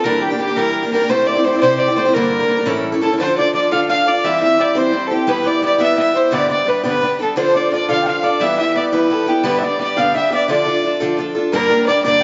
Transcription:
Already playing: A4 C5 D5 E5
0.04 E3 G3 A#3 D4 G4 A#4
0.22 G4
0.30 A#3 D4 G4
0.38 G3 A#3 D4 G4
0.47 A#3 D4 G4
0.56 E3 G3 A#3 D4 G4 A#4
0.83 A#3 D4 G4
0.92 G3 A#3 D4 G4 A#4
1.00 A#3 D4 G4
1.08 C3 A3 C4 E4 G4 C5
1.27 D5
1.35 C4 E4 G4
1.44 A3 C4 E4 G4 C5
1.52 C4 E4 G4
1.58 C3 C5 D5
1.62 A3 C4 E4 G4 C5
1.78 D5
1.88 C4 E4 G4
1.96 A3 C4 E4 G4 C5
2.05 C4 E4 G4
2.14 G2 D3 G3 A#3 D4 A#4
2.40 G3 A#3 D4 A#4
2.48 G3 A#3 D4 A#4
2.57 G3 A#3 D4 A#4
2.66 A2 E3 G3 C#4 E4 A4
2.92 G3 C#4 E4 A4
3.01 G3 C#4 E4 A4
3.11 G3 C#4 E4 A4
3.19 D3 F3 D4 F4 A4 C5
3.36 D4 F4 A4 D5
3.54 F3 D4 F4 A4 D5
3.71 D3 F3 D4 F4 A4 F5
3.88 F3 D4 F4 A4 F5
4.06 D4 F4 A4 D5
4.24 E3 G3 C4 E4 G4 E5
4.40 C4 E4 G4 E5
4.57 G3 C4 E4 G4 D5
4.61 D5
4.75 E3 G3 C4 E4 G4 C5
4.92 G3 C4 E4 G4
5.07 G4 A4
5.11 C4 E4 G4
5.27 E3 G3 B3 E4 G4 B4
5.43 B3 E4 G4 D5
5.61 G3 B3 E4 G4 D5
5.65 D5
5.78 E3 G3 B3 E4 G4 E5
5.96 G3 B3 E4 G4 E5
6.13 B3 E4 G4 C5
6.17 C5
6.31 G2 D3 G3 B3 D4 G4 D5
6.49 G3 B3 D4 G4 D5
6.66 G3 B3 D4 G4 B4
6.83 G2 D3 G3 B3 D4 G4 B4
7.01 G3 B3 D4 G4 B4
7.19 G3 B3 D4 G4 A4
7.36 D3 F3 D4 F4 A4 C5
7.53 D4 F4 A4 D5
7.71 F3 D4 F4 A4 D5
7.89 D3 F3 D4 F4 A4 F5
8.02 F3 G5
8.06 D4 F4 A4 F5
8.23 D4 F4 A4 D5
8.40 E3 G3 B3 E4 G4 E5
8.57 B3 E4 G4 E5
8.74 G3 B3 E4 G4 D5
8.92 E3 G3 B3 E4 G4 B4
9.08 G3 B3 E4 G4 A4
9.23 G4 A4
9.27 B3 E4 G4
9.43 G2 D3 G3 B3 D4 G4 B4
9.59 D4 G4 D5 E5
9.63 G3 B3 D5
9.79 G3 B3 D4 G4 D5
9.97 G2 D3 G3 B3 D4 G4 F5
10.14 G3 B3 D4 G4 E5
10.30 G3 B3 D4 G4 D5
10.34 D5
10.48 D3 F3 D4 F4 A4 D5
10.65 D4 F4 A4
10.84 F3 D4 F4 A4
11.00 D3 F3 D4 F4 A4
11.17 F3 D4 F4 A4
11.35 D4 F4 A4
11.52 G2 D3 G3 A#3 D4 G4 A#4
11.70 G3 A#3 D4 G4
11.87 G3 A#3 D4 G4 D5
12.04 G2 D3 G3 A#3 D4 G4 D5

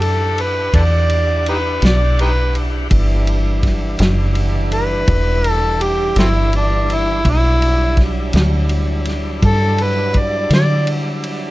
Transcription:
Already playing: F#2 D4 E4 G4 F#5
0.01 A4, ride
0.38 B4, ride
0.73 E2 A4 B4 D5, kick, ride
1.10 ride
1.46 D#4 G4 B4, ride
1.82 B1 D5, snare, ride
2.19 D#4 G4 B4, ride
2.55 ride
2.89 G1 E3 G3 D4 E4, kick, ride
3.27 ride
3.63 kick, snare, ride
3.99 F#1, snare, ride
4.35 ride
4.72 B4, ride
5.08 E1, kick, ride
5.44 ride
5.50 A4
5.81 G4, ride
6.16 G1 A3 C4 E4, snare, ride
6.53 D4, ride
6.90 ride
6.94 E4
7.24 B1 F#3 G3 D4 E4, kick, ride
7.30 E4
7.62 ride
7.97 kick, snare, ride
8.33 D2, snare, ride
8.69 ride
9.05 snare, ride
9.42 G2, kick, ride
9.46 A4
9.78 ride
9.82 B4
10.14 kick, ride
10.19 D5
10.50 D3 D5, snare, ride
10.87 ride
11.24 ride

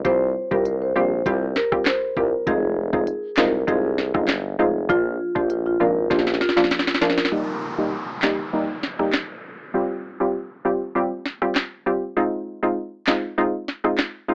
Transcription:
0.04 C2 G3 C4 F4 G4 C5, kick, closed hi-hat
0.51 C2 G3 C4 F4 G4 A#4, kick
0.65 closed hi-hat
0.81 C5
0.95 A#1 G3 C4 F4 G4 C5
1.26 C2 G3 C4 F4 G4, kick, closed hi-hat
1.56 A#4, snare
1.72 G3 C4 F4 G4, kick, cross-stick
1.86 C5, snare, clap, closed hi-hat
2.17 C2 G3 C4 F4 G4 A#4, kick
2.47 F1 G#3 C4 D#4 F4 G#4, kick, closed hi-hat
2.93 F1 G#3 C4 D#4 F4 G#4, kick
3.07 closed hi-hat
3.37 C2 G#3 C4 D#4 F4 A#4, snare, clap
3.67 C2 G#3 C4 D#4 F4 G#4, kick, closed hi-hat
3.98 snare
4.14 G1 G#3 C4 D#4 F4, kick, cross-stick
4.28 snare, clap, closed hi-hat
4.59 F1 G#3 C4 D#4 F4 G#4
4.89 A#1 F3 A#3 D4 F4, kick, closed hi-hat
5.35 A#1 F3 A#3 D4 F4 G4, kick
5.50 closed hi-hat
5.66 F4
5.80 G#1 F3 A#3 D4 F4 A#4
6.10 A#1 F3 A#3 D4 F4 G4, kick, snare, closed hi-hat
6.19 snare
6.27 snare
6.34 snare
6.41 F4, snare
6.49 snare
6.57 F3 A#3 D4 F4, snare
6.64 snare
6.71 snare, closed hi-hat
6.79 snare
6.87 snare
6.94 snare
7.01 A#1 F3 A#3 D4 F4 A#4, snare
7.10 snare
7.17 snare
7.25 snare
7.32 G3 A#3 D#4 G4, downlifter
7.78 G3 A#3 D#4 G4
8.22 G3 A#3 D#4 G4, snare, clap
8.53 G3 A#3 D#4 G4
8.83 snare
8.99 G3 A#3 D#4 G4, cross-stick
9.13 snare, clap
9.74 G3 C4 F4 G4
10.20 G3 C4 F4 G4
10.65 G3 C4 F4 G4
10.95 G3 C4 F4 G4
11.26 snare
11.42 G3 C4 F4 G4, cross-stick
11.55 snare, clap
11.86 G3 C4 F4 G4
12.16 G#3 C4 D#4 F4
12.63 G#3 C4 D#4 F4
13.07 G#3 C4 D#4 F4, snare, clap
13.38 G#3 C4 D#4 F4
13.68 snare
13.84 G#3 C4 D#4 F4, cross-stick
13.98 snare, clap
14.28 G#3 C4 D#4 F4

